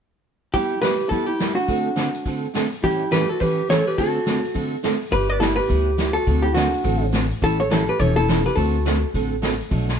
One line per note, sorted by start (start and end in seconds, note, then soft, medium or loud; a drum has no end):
0.54 0.74 G3 medium
0.54 0.74 B3 medium
0.54 0.74 E4 medium
0.54 0.81 E4 medium
0.54 0.81 G4 loud
0.54 0.74 G4 medium
0.54 kick soft
0.54 open hi-hat soft
0.82 0.94 G3 medium
0.82 0.94 B3 medium
0.82 0.94 E4 medium
0.82 1.09 G4 medium
0.82 0.94 G4 medium
0.82 1.09 B4 loud
0.82 snare medium
0.82 closed hi-hat medium
1.00 open hi-hat soft
1.09 1.31 G3 medium
1.09 1.31 B3 medium
1.09 1.28 E4 medium
1.09 1.31 E4 medium
1.09 1.31 G4 medium
1.09 1.26 A4 medium
1.09 kick soft
1.09 open hi-hat soft
1.26 1.55 E4 medium
1.26 1.57 G4 medium
1.40 1.51 G3 medium
1.40 1.51 B3 medium
1.40 1.52 E4 medium
1.40 1.52 G4 medium
1.40 snare medium
1.40 closed hi-hat soft
1.55 2.38 D4 medium
1.55 2.38 F#4 medium
1.55 open hi-hat soft
1.68 1.88 D3 medium
1.68 1.88 A3 medium
1.68 1.88 C4 medium
1.68 1.88 F#4 medium
1.68 1.88 A4 medium
1.68 kick soft
1.68 open hi-hat soft
1.96 2.08 D3 medium
1.96 2.08 A3 medium
1.96 2.08 C4 medium
1.96 2.08 F#4 medium
1.96 2.08 A4 medium
1.96 snare medium
1.96 closed hi-hat soft
2.14 open hi-hat soft
2.26 2.46 D3 medium
2.26 2.46 A3 medium
2.26 2.46 C4 medium
2.26 2.46 F#4 medium
2.26 2.46 A4 medium
2.26 kick soft
2.26 open hi-hat soft
2.54 2.65 D3 medium
2.54 2.66 A3 medium
2.54 2.66 C4 medium
2.54 2.66 F#4 medium
2.54 2.66 A4 medium
2.54 snare medium
2.54 closed hi-hat medium
2.73 open hi-hat soft
2.83 3.03 A2 medium
2.83 3.03 E3 medium
2.83 3.03 G3 medium
2.83 3.03 C#4 medium
2.83 3.10 E4 medium
2.83 3.03 E4 medium
2.83 3.13 G4 medium
2.83 3.03 A4 medium
2.83 kick soft
2.83 open hi-hat soft
3.11 3.23 A2 medium
3.11 3.23 E3 medium
3.11 3.23 G3 medium
3.11 3.23 C#4 medium
3.11 3.23 E4 medium
3.11 3.32 G4 medium
3.11 3.23 A4 medium
3.11 3.29 B4 loud
3.11 snare medium
3.11 closed hi-hat medium
3.29 3.44 F#4 medium
3.29 3.40 A4 medium
3.40 3.60 A2 medium
3.40 3.60 E3 medium
3.40 3.60 G3 medium
3.40 3.60 C#4 medium
3.40 3.61 E4 medium
3.40 3.70 G4 medium
3.40 3.61 A4 medium
3.40 3.70 B4 medium
3.40 kick soft
3.40 open hi-hat soft
3.69 3.80 A2 medium
3.69 3.80 E3 medium
3.69 3.81 G3 medium
3.69 3.81 C#4 medium
3.69 3.81 E4 medium
3.69 3.81 A4 medium
3.69 3.89 A4 medium
3.69 3.87 C#5 loud
3.69 snare medium
3.69 closed hi-hat soft
3.87 3.98 G4 medium
3.87 3.98 B4 medium
3.87 open hi-hat soft
3.98 4.18 D3 medium
3.98 4.18 A3 medium
3.98 4.18 C4 medium
3.98 4.18 F#4 medium
3.98 4.80 F#4 medium
3.98 4.80 A4 medium
3.98 4.18 A4 medium
3.98 kick soft
3.98 open hi-hat soft
4.26 4.37 D3 medium
4.26 4.38 A3 medium
4.26 4.38 C4 medium
4.26 4.38 F#4 medium
4.26 4.38 A4 medium
4.26 snare medium
4.26 closed hi-hat soft
4.44 open hi-hat soft
4.54 4.75 D3 medium
4.54 4.75 A3 medium
4.54 4.75 C4 medium
4.54 4.75 F#4 medium
4.54 4.75 A4 medium
4.54 kick soft
4.54 open hi-hat soft
4.83 4.95 D3 medium
4.83 4.95 A3 medium
4.83 4.95 C4 medium
4.83 4.95 F#4 medium
4.83 4.95 A4 medium
4.83 snare medium
4.83 closed hi-hat soft
5.02 open hi-hat soft
5.10 5.58 G1 medium
5.10 5.31 G3 medium
5.10 5.32 B3 medium
5.10 5.32 E4 medium
5.10 5.32 G4 medium
5.10 5.31 G4 medium
5.10 5.30 B4 loud
5.10 kick soft
5.10 open hi-hat soft
5.30 5.41 B4 medium
5.30 5.40 D5 loud
5.40 5.52 G3 medium
5.40 5.52 B3 medium
5.40 5.52 E4 medium
5.40 5.57 E4 medium
5.40 5.52 G4 medium
5.40 5.45 A4 medium
5.40 snare medium
5.40 closed hi-hat medium
5.56 6.16 G4 medium
5.56 6.13 B4 medium
5.56 open hi-hat soft
5.68 6.16 D2 medium
5.68 5.89 G3 medium
5.68 5.89 B3 medium
5.68 5.89 E4 medium
5.68 5.90 G4 medium
5.68 kick soft
5.68 open hi-hat soft
5.98 6.09 G3 medium
5.98 6.09 B3 medium
5.98 6.10 E4 medium
5.98 6.10 G4 medium
5.98 snare medium
5.98 closed hi-hat medium
6.13 6.43 F#4 medium
6.13 6.44 A4 medium
6.13 open hi-hat soft
6.27 6.73 D2 medium
6.27 6.47 D3 medium
6.27 6.47 A3 medium
6.27 6.47 C4 medium
6.27 6.47 F#4 medium
6.27 6.47 A4 medium
6.27 kick soft
6.27 open hi-hat soft
6.42 6.55 E4 medium
6.42 6.54 G4 medium
6.54 6.66 D3 medium
6.54 6.66 A3 medium
6.54 6.67 C4 medium
6.54 7.09 D4 medium
6.54 7.08 F#4 medium
6.54 6.67 F#4 medium
6.54 6.67 A4 medium
6.54 snare medium
6.54 closed hi-hat medium
6.74 open hi-hat soft
6.84 7.30 A1 medium
6.84 7.04 D3 medium
6.84 7.04 A3 medium
6.84 7.04 C4 medium
6.84 7.04 F#4 medium
6.84 7.04 A4 medium
6.84 kick soft
6.84 open hi-hat soft
7.12 7.24 D3 medium
7.12 7.24 A3 medium
7.12 7.24 C4 medium
7.12 7.24 F#4 medium
7.12 7.24 A4 medium
7.12 snare medium
7.12 closed hi-hat soft
7.31 open hi-hat soft
7.42 7.88 A1 medium
7.42 7.62 E3 medium
7.42 7.62 G3 medium
7.42 7.62 C#4 medium
7.42 7.62 E4 medium
7.42 7.59 E4 medium
7.42 7.62 A4 medium
7.42 7.61 A4 loud
7.42 kick soft
7.42 open hi-hat soft
7.60 7.70 A4 medium
7.60 7.71 C#5 loud
7.70 7.81 E3 medium
7.70 7.82 G3 medium
7.70 7.82 C#4 medium
7.70 7.87 E4 medium
7.70 7.82 E4 medium
7.70 7.89 A4 medium
7.70 7.82 A4 medium
7.70 snare medium
7.70 closed hi-hat soft
7.89 8.01 G4 medium
7.89 8.00 B4 medium
7.99 8.45 E1 medium
7.99 8.19 E3 medium
7.99 8.19 G3 medium
7.99 8.19 C#4 medium
7.99 8.20 E4 medium
7.99 8.17 A4 medium
7.99 8.20 A4 medium
7.99 8.18 C#5 medium
7.99 kick soft
7.99 open hi-hat soft
8.16 8.44 E4 medium
8.16 8.46 A4 medium
8.28 8.39 E3 medium
8.28 8.39 G3 medium
8.28 8.40 C#4 medium
8.28 8.39 E4 medium
8.28 8.40 A4 medium
8.28 snare medium
8.28 closed hi-hat soft
8.45 8.56 G4 medium
8.45 8.57 B4 medium
8.45 open hi-hat soft
8.56 9.03 D2 medium
8.56 8.76 D3 medium
8.56 8.76 A3 medium
8.56 8.77 C4 medium
8.56 9.10 F#4 medium
8.56 8.77 F#4 medium
8.56 9.09 A4 medium
8.56 8.77 A4 medium
8.56 kick soft
8.56 open hi-hat soft
8.85 8.96 D3 medium
8.85 8.97 A3 medium
8.85 8.97 C4 medium
8.85 8.97 F#4 medium
8.85 8.97 A4 medium
8.85 snare medium
8.85 closed hi-hat medium
9.14 9.60 A1 medium
9.14 9.34 D3 medium
9.14 9.34 A3 medium
9.14 9.34 C4 medium
9.14 9.34 F#4 medium
9.14 9.34 A4 medium
9.14 kick soft
9.14 open hi-hat soft
9.42 9.53 D3 medium
9.42 9.53 A3 medium
9.42 9.53 C4 medium
9.42 9.54 F#4 medium
9.42 9.54 A4 medium
9.42 snare medium
9.42 closed hi-hat medium
9.60 open hi-hat soft
9.71 10.00 B1 medium
9.71 9.91 B2 medium
9.71 9.91 F#3 medium
9.71 9.91 A3 medium
9.71 9.91 D4 medium
9.71 9.91 F#4 medium
9.71 kick soft
9.71 open hi-hat soft
9.89 snare soft